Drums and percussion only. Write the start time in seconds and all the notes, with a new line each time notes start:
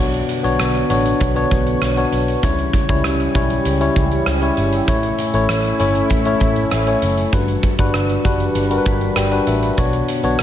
0.14 closed hi-hat
0.29 closed hi-hat
0.44 closed hi-hat
0.60 cross-stick, closed hi-hat
0.75 closed hi-hat
0.90 closed hi-hat
1.06 closed hi-hat
1.20 kick, closed hi-hat
1.36 closed hi-hat
1.51 kick, closed hi-hat
1.67 closed hi-hat
1.82 cross-stick, closed hi-hat
1.97 closed hi-hat
2.12 closed hi-hat
2.28 closed hi-hat
2.43 kick, closed hi-hat
2.59 closed hi-hat
2.73 kick, closed hi-hat
2.89 kick, closed hi-hat
3.04 cross-stick, closed hi-hat
3.20 closed hi-hat
3.35 kick, closed hi-hat
3.50 closed hi-hat
3.65 closed hi-hat
3.81 closed hi-hat
3.96 kick, closed hi-hat
4.12 closed hi-hat
4.26 cross-stick, closed hi-hat
4.42 closed hi-hat
4.57 closed hi-hat
4.73 closed hi-hat
4.88 kick, closed hi-hat
5.03 closed hi-hat
5.19 closed hi-hat
5.34 closed hi-hat
5.49 cross-stick, closed hi-hat
5.64 closed hi-hat
5.80 closed hi-hat
5.95 closed hi-hat
6.10 kick, closed hi-hat
6.25 closed hi-hat
6.40 kick, closed hi-hat
6.56 closed hi-hat
6.71 cross-stick, closed hi-hat
6.87 closed hi-hat
7.02 closed hi-hat
7.18 closed hi-hat
7.33 kick, closed hi-hat
7.48 closed hi-hat
7.63 kick, closed hi-hat
7.78 kick, closed hi-hat
7.94 cross-stick, closed hi-hat
8.10 closed hi-hat
8.25 kick, closed hi-hat
8.40 closed hi-hat
8.55 closed hi-hat
8.71 closed hi-hat
8.86 kick, closed hi-hat
9.01 closed hi-hat
9.16 cross-stick, closed hi-hat
9.32 closed hi-hat
9.47 closed hi-hat
9.63 closed hi-hat
9.78 kick, closed hi-hat
9.93 closed hi-hat
10.08 closed hi-hat
10.24 closed hi-hat
10.39 cross-stick, closed hi-hat